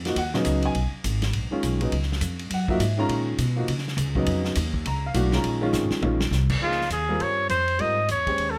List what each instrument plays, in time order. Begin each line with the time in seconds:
Already playing: upright bass F2
0.05 grand piano F3 A#3 D#4 F#4, snare, ride
0.16 upright bass D#2, grand piano F#5, ride
0.34 grand piano C#3 F#3 B3 D#4 D#5, snare
0.45 upright bass C#2, hi-hat pedal, ride
0.62 grand piano G#5, ride
0.75 upright bass B1, ride
0.93 muted upright bass stroke
1.04 upright bass G#1, hi-hat pedal, ride
1.22 snare, ride
1.33 upright bass A#1, ride
1.51 grand piano D#3 G#3 C#4 F4, muted upright bass stroke
1.63 upright bass B1, hi-hat pedal, ride
1.81 grand piano C#3 F#3 B3 D#4, ride
1.92 upright bass C#2, ride
2.02 snare
2.12 snare
2.21 upright bass F2, hi-hat pedal, ride
2.39 ride
2.50 upright bass F#2, grand piano F#5, ride
2.68 grand piano F3 A#3 D#4 F#4 E5, kick
2.79 upright bass G#2, hi-hat pedal, ride
2.98 grand piano D#3 G#3 C#4 F4 A#5
3.09 upright bass A#2, ride
3.38 upright bass B2, hi-hat pedal, ride
3.56 grand piano F3 A#3 D#4 F#4
3.68 upright bass C#3, ride
3.78 snare
3.88 snare
3.97 upright bass C#2, hi-hat pedal, ride
4.15 grand piano C#3 F#3 B3 D#4, kick
4.26 upright bass F2, ride
4.44 snare
4.55 upright bass D#2, hi-hat pedal, ride
4.74 kick
4.86 upright bass C#2, grand piano A#5, ride
5.06 grand piano F5
5.14 upright bass B1, grand piano E3 A3 D4 F#4, hi-hat pedal, ride
5.32 grand piano D#3 G#3 C#4 F4 A#5, snare
5.44 upright bass A#1, ride
5.61 grand piano D#3 G#3 C#4 F4
5.73 upright bass G#1, snare, hi-hat pedal
5.90 muted upright bass stroke, snare
6.01 upright bass A#1, grand piano D#3 G#3 C#4 F4, mid tom
6.20 snare
6.31 upright bass C2, snare, hi-hat pedal
6.50 kick, crash
6.61 upright bass C#2, grand piano F3 A#3 D#4 G#4, trumpet F4
6.71 snare
6.81 snare
6.90 upright bass D#2, trumpet G#4, hi-hat pedal, ride
7.09 grand piano G3 C4 F4 A#4
7.20 upright bass G2, trumpet C#5, ride
7.49 upright bass F2, trumpet C5, hi-hat pedal, ride
7.68 ride
7.79 upright bass G#2, grand piano G3 C4 F4 A#4, trumpet D#5, ride
8.09 upright bass E2, trumpet C#5, hi-hat pedal, ride
8.27 grand piano G#3 C#4 G4 C5, kick, ride
8.38 upright bass D#2, ride
8.51 trumpet A4